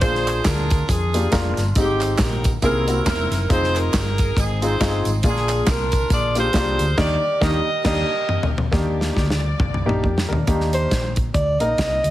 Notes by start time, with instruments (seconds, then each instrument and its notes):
0.00 fingered electric bass A#1, grand piano A#2 A#3 D4 F4 G#4, saxophone section F4 G#4 C5, kick, closed hi-hat, tambourine
0.15 snare
0.27 clap, closed hi-hat, tambourine
0.45 fingered electric bass D2, saxophone section D4 F4 A#4, kick, snare, clap, closed hi-hat, tambourine
0.70 kick, closed hi-hat, tambourine
0.89 fingered electric bass F2, saxophone section D4 F4 G#4, kick, closed hi-hat, tambourine
1.14 grand piano A#3 D4 F4 G4, closed hi-hat, tambourine
1.31 fingered electric bass F1, grand piano A#3 D4 F4 A#4, kick, snare, clap, closed hi-hat, tambourine
1.57 fingered electric bass G1, snare, closed hi-hat, tambourine
1.75 fingered electric bass G#1, grand piano G#2 G#3 C4 D#4 G4, saxophone section C4 D#4 G4, kick, closed hi-hat, tambourine
2.01 clap, closed hi-hat, tambourine
2.18 fingered electric bass A#1, saxophone section D#4 G4 A#4, kick, snare, clap, closed hi-hat, tambourine
2.44 kick, closed hi-hat, tambourine
2.62 fingered electric bass C2, grand piano C3 A#3 C4 E4 G#4, saxophone section D#4 E4 A#4, kick, closed hi-hat, tambourine
2.87 grand piano A#3 C4 E4 F#4, closed hi-hat, tambourine
3.06 fingered electric bass E1, grand piano A#3 C4 E4 A#4, saxophone section D#4 E4 A#4, kick, snare, clap, closed hi-hat, tambourine
3.31 fingered electric bass F#1, snare, closed hi-hat, tambourine
3.49 fingered electric bass F1, grand piano C4 D#4 F4 G#4, saxophone section D#4 G#4 C5, kick, closed hi-hat, tambourine
3.63 snare
3.75 saxophone section D#4 A#4, clap, closed hi-hat, tambourine
3.94 fingered electric bass G1, kick, snare, clap, closed hi-hat, tambourine
4.18 kick, closed hi-hat, tambourine
4.37 fingered electric bass G#1, saxophone section C4 D#4 G#4, kick, closed hi-hat, tambourine
4.62 grand piano C4 D#4 F4 G#4, saxophone section D#4 G#4 C5, closed hi-hat, tambourine
4.80 fingered electric bass G1, grand piano C4 D#4 F4 G#4, kick, snare, clap, closed hi-hat, tambourine
5.05 fingered electric bass G#1, closed hi-hat, tambourine
5.23 fingered electric bass A#1, grand piano A#2 A#3 D4 F4 G#4, saxophone section D4 F4 G#4, kick, closed hi-hat, tambourine
5.36 snare
5.49 clap, closed hi-hat, tambourine
5.67 fingered electric bass C2, saxophone section D4 F4 A#4, kick, snare, clap, closed hi-hat, tambourine
5.92 kick, closed hi-hat, tambourine
6.10 fingered electric bass A#1, saxophone section F4 G#4 D5, kick, closed hi-hat, tambourine
6.35 grand piano A#3 D4 F4 G4, saxophone section F4 G#4 C5, closed hi-hat, tambourine
6.53 fingered electric bass C2, grand piano A#3 D4 F4 G4, kick, snare, clap, closed hi-hat, tambourine
6.79 fingered electric bass D2, closed hi-hat, tambourine
6.98 fingered electric bass D#2, grand piano D#3 A#3 D4 D#4 G4, saxophone section G4 A#4 D5, kick, snare, crash
7.41 fingered electric bass D#2, grand piano D#3 A#3 D4 D#4 G4, saxophone section G4 A#4 D#5, kick, snare
7.84 fingered electric bass D#2, grand piano A#3 D4 D#4 G4, saxophone section G4 A#4 D#5, kick, snare, crash
8.29 mid tom
8.43 floor tom
8.58 floor tom
8.71 fingered electric bass D#2, grand piano D#3 A#3 D4 D#4 G4, string section G3 A#3 D5, kick, snare
9.01 snare
9.16 fingered electric bass D2, kick, snare
9.30 snare
9.59 fingered electric bass C2, kick, mid tom
9.74 mid tom
9.86 fingered electric bass A#1, grand piano A#3 D4 D#4 G4, mid tom
10.03 fingered electric bass F2, grand piano A#3 G4, kick
10.18 snare
10.29 fingered electric bass D#2, grand piano D4 A#4
10.33 floor tom
10.47 fingered electric bass D#2, grand piano D#3 A#3 D4 D#4 G4, kick, closed hi-hat
10.60 snare
10.73 alto saxophone C5, closed hi-hat
10.91 fingered electric bass A#1, kick, snare, closed hi-hat
11.16 kick, closed hi-hat
11.34 fingered electric bass D2, alto saxophone D5, kick, closed hi-hat
11.59 fingered electric bass A#1, grand piano A#3 D#4 A#4, alto saxophone D#5, closed hi-hat
11.78 fingered electric bass C2, kick, snare, closed hi-hat
12.03 fingered electric bass D2, closed hi-hat